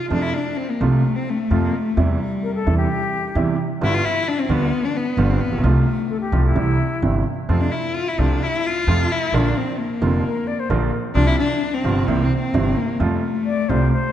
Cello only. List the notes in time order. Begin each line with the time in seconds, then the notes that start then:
0.10 D4
0.22 E4
0.34 D4
0.57 C4
0.70 A#3
0.81 A3
1.16 C4
1.29 A3
1.65 A#3
1.77 A3
1.99 G3
3.84 E4
3.94 F4
4.05 E4
4.28 D4
4.40 C4
4.51 B3
4.85 D4
4.96 B3
5.30 C4
5.41 B3
5.63 A3
7.50 C4
7.60 D4
7.71 E4
7.95 F4
8.08 E4
8.19 D4
8.43 E4
8.66 F4
9.11 E4
9.34 D4
9.57 C4
9.79 A#3
11.15 D4
11.27 E4
11.39 D4
11.74 C4
12.08 A#3
12.24 C4
12.38 C4
12.77 A#3
13.01 A3